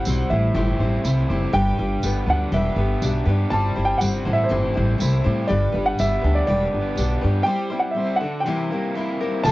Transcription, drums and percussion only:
0.05 tambourine
1.05 tambourine
2.03 tambourine
3.02 tambourine
4.01 tambourine
5.00 tambourine
5.99 tambourine
6.98 tambourine
9.45 tambourine

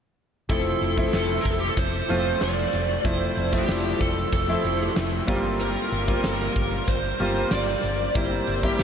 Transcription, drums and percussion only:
0.50 kick, closed hi-hat
0.81 closed hi-hat
0.97 kick
1.13 snare, closed hi-hat
1.45 kick, closed hi-hat
1.77 kick, closed hi-hat
2.09 closed hi-hat
2.41 snare, closed hi-hat
2.73 closed hi-hat
3.05 kick, closed hi-hat
3.37 closed hi-hat
3.53 kick
3.68 snare, closed hi-hat
4.01 kick, closed hi-hat
4.32 kick, closed hi-hat
4.65 closed hi-hat
4.96 snare, closed hi-hat
5.28 kick, closed hi-hat
5.60 closed hi-hat
5.92 closed hi-hat
6.08 kick
6.24 snare, closed hi-hat
6.56 kick, closed hi-hat
6.87 kick, closed hi-hat
7.20 closed hi-hat
7.51 snare, closed hi-hat
7.83 closed hi-hat
8.15 kick, closed hi-hat
8.47 closed hi-hat
8.63 kick
8.79 snare, closed hi-hat

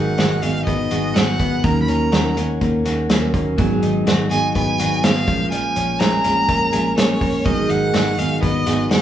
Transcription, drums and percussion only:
0.18 snare, closed hi-hat
0.43 closed hi-hat
0.67 kick, closed hi-hat
0.91 closed hi-hat
1.16 snare, closed hi-hat
1.40 kick, closed hi-hat
1.64 kick, closed hi-hat
1.88 closed hi-hat
2.12 snare, closed hi-hat
2.37 closed hi-hat
2.61 kick, closed hi-hat
2.85 snare, closed hi-hat
3.10 snare, closed hi-hat
3.34 kick, closed hi-hat
3.58 kick, closed hi-hat
3.83 closed hi-hat
4.07 snare, closed hi-hat
4.31 closed hi-hat
4.55 kick, closed hi-hat
4.79 closed hi-hat
5.04 snare, closed hi-hat
5.28 kick, closed hi-hat
5.52 closed hi-hat
5.76 closed hi-hat
6.00 snare, closed hi-hat
6.24 closed hi-hat
6.49 kick, closed hi-hat
6.73 closed hi-hat
6.98 snare, closed hi-hat
7.21 kick, open hi-hat
7.46 kick, closed hi-hat
7.70 closed hi-hat
7.94 snare, closed hi-hat
8.19 closed hi-hat
8.43 kick, closed hi-hat
8.67 snare, closed hi-hat
8.91 snare, closed hi-hat

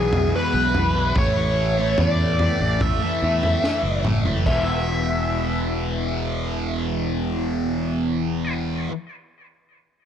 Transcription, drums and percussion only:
0.13 floor tom
0.75 floor tom
1.16 kick, floor tom
1.98 floor tom
2.39 floor tom
2.81 kick, floor tom
3.43 floor tom
3.64 snare
4.05 mid tom
4.25 floor tom
4.46 kick, china

